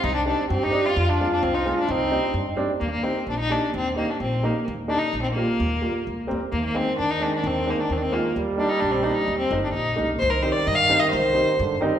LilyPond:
<<
  \new Staff \with { instrumentName = "Violin" } { \time 2/4 \key c \minor \tempo 4 = 130 ees'16 d'16 d'8 c'16 ees'8 f'16~ | f'16 d'8 d'16 c'16 ees'8 d'16 | c'4. r8 | \key ees \major bes16 bes16 c'8 d'16 ees'16 d'8 |
c'8 bes16 d'16 c'8 bes8 | r8 d'16 ees'8 c'16 bes8~ | bes4. r8 | bes16 bes16 c'8 d'16 ees'16 d'16. d'32 |
c'8 bes16 d'16 c'32 d'32 c'16 bes8 | r8 d'16 ees'16 d'16 c'16 d'16 ees'16~ | ees'16 c'8 d'16 ees'8. r16 | \key c \minor c''16 bes'16 c''16 d''16 ees''16 f''8 ees''16 |
c''4. r8 | }
  \new Staff \with { instrumentName = "Upright piano" } { \time 2/4 \key c \minor r8 <g c' ees'>16 r8. <g c' d'>16 r16 | r8 <aes c' f'>16 r8. <aes c' f'>16 r16 | r8 <g c' ees'>16 r8. <g c' d'>16 r16 | \key ees \major r8 <g bes ees'>16 r8. <g bes ees'>16 r16 |
r8 <g bes ees'>16 r8. <g bes ees'>16 r16 | r8 <g bes ees'>16 r8. <g bes f'>16 r16 | r8 <g bes f'>16 r8. <g bes c'>16 r16 | r8 <aes c' ees'>16 r8. <aes c' ees'>16 r16 |
r8 <aes c' ees'>16 r8. <aes c' f'>16 r16 | r8 <g bes ees'>16 r8. <g bes ees'>16 r16 | r8 <g bes ees'>16 r8. <g bes ees'>16 r16 | \key c \minor r8 <g c' ees'>16 r8. <g c' ees'>16 r16 |
r8 <g c' ees'>16 r8. <g c' ees'>16 r16 | }
  \new Staff \with { instrumentName = "Trombone" } { \time 2/4 \key c \minor c'4 g'4 | f'2 | ees'4 ees'4 | \key ees \major r2 |
r2 | r2 | r2 | ees2~ |
ees2 | g2~ | g4. r8 | \key c \minor ees2~ |
ees4 d8 ees8 | }
  \new Staff \with { instrumentName = "Upright bass" } { \clef bass \time 2/4 \key c \minor c,4 g,4 | f,4 c,4 | c,4 g,4 | \key ees \major ees,4 bes,,4 |
ees,4 bes,,4 | ees,4 bes,,4 | ees,4 c,8 d,8 | ees,4 ees,4 |
ees,4 ees,4 | ees,4 bes,,4 | ees,8 g,,8 bes,,8 c,8 | \key c \minor c,4 g,4 |
c,4 g,4 | }
>>